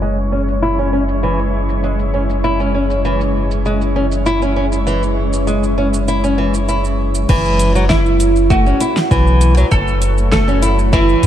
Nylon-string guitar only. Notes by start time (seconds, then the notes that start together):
0.02 G#3
0.32 C#4
0.62 E4
0.79 C#4
0.93 C#4
1.23 E3
1.84 G#3
2.14 C#4
2.44 E4
2.60 C#4
2.75 C#4
3.05 E3
3.66 G#3
3.96 C#4
4.26 E4
4.42 C#4
4.56 C#4
4.87 E3
5.47 G#3
5.78 C#4
6.08 E4
6.24 C#4
6.38 E3
6.69 E4
7.29 E3
7.75 F#3
8.50 A3
8.66 C#4
8.81 E4
9.11 E3
9.57 F#3
10.32 A3
10.48 C#4
10.62 E4
10.93 E3